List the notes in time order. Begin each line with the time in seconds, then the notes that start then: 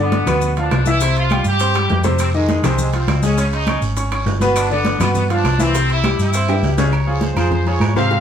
Already playing: G2 D3 D4 D5
0.00 B3
0.12 high conga, high timbale, low timbale, maracas
0.26 D2 B2 B3 B4, high conga, low conga, high timbale, claves, maracas
0.41 B3, high conga, maracas
0.57 F3 D4 F4 F5, high conga, high timbale, maracas
0.71 C2, high conga, high timbale, low timbale, claves, maracas
0.86 E3 E4 E5, high conga, maracas
1.00 C3 C4 C5, high conga, high timbale, maracas
1.15 F4, high conga, high timbale, maracas
1.29 G3 G4 G5, high conga, high timbale, low timbale, claves, maracas
1.44 G2 G4, high conga, maracas
1.59 C4 C5 C6, high conga, high timbale, maracas
1.74 G3 G4 G5, high conga, high timbale, claves, maracas
1.89 F2, high conga, low timbale, maracas
2.04 C3 C4 C5, high conga, high timbale, maracas
2.19 C4, high conga, high timbale, long guiro, claves, maracas
2.34 D#3 G#3 D#4 D#5, high conga, maracas
2.49 high conga, high timbale, low timbale, short guiro, maracas
2.63 C2 C3 C4 C5, high conga, low conga, high timbale, short guiro, claves, maracas
2.78 G#3, high conga, low conga, long guiro, maracas
2.93 F3 C4 F4 F5, high conga, high timbale, maracas
3.08 C#2, high conga, high timbale, low timbale, short guiro, claves, maracas
3.23 G#3 C#4 G#4 G#5, high conga, short guiro, maracas
3.38 C#3 C#4 C#5, high conga, high timbale, long guiro, maracas
3.52 D#4, high conga, high timbale, maracas
3.67 C#4 C#5 C#6, high conga, high timbale, low timbale, short guiro, claves, maracas
3.82 G#1, high conga, short guiro, maracas
3.96 C#4 C#5 C#6, high conga, high timbale, long guiro, maracas
4.11 C#4 C#5 C#6, high conga, high timbale, claves, maracas
4.26 G1, high conga, low timbale, short guiro, maracas
4.41 B2 B3 B4, high conga, high timbale, short guiro, maracas
4.56 D4, high conga, high timbale, long guiro, claves, maracas
4.70 D3 B3 D4 D5, high conga, maracas
4.85 high conga, high timbale, low timbale, short guiro, maracas
5.00 G2 B2 B3 B4, high conga, low conga, high timbale, short guiro, claves, maracas
5.15 B3, high conga, low conga, long guiro, maracas
5.29 F3 D4 F4 F5, high conga, high timbale, maracas
5.44 C2, high conga, high timbale, low timbale, short guiro, claves, maracas
5.59 E3 C4 E4 E5, high conga, short guiro, maracas
5.74 C3 C4 C5, high conga, high timbale, long guiro, maracas
5.89 E4, high conga, high timbale, maracas
6.04 G3 G4 G5, high conga, high timbale, low timbale, short guiro, claves, maracas
6.18 G2 E4, high conga, short guiro, maracas
6.33 C4 C5 C6, high conga, high timbale, long guiro, maracas
6.48 G3 G4 G5, high conga, high timbale, claves, maracas
6.63 C#2, high conga, low timbale, short guiro, maracas
6.78 C#3 C#4 C#5, high conga, low timbale, short guiro, maracas
6.92 C#5, high conga, low agogo, long guiro, claves
7.07 F3 F4 G#4, high conga
7.21 C5, high conga, low timbale, low agogo, short guiro
7.36 F2 F3 F4 G#4 C5, high conga, low conga, low agogo, short guiro, claves
7.51 C5, high conga, low conga, low agogo, long guiro
7.66 F3 F4 G#4 C#5, high conga, low agogo
7.80 G#2, high conga, low timbale, low agogo, short guiro, claves
7.96 C3 C4 C5 F5, high conga, short guiro
8.10 C3 C4 C5, high conga, low agogo, long guiro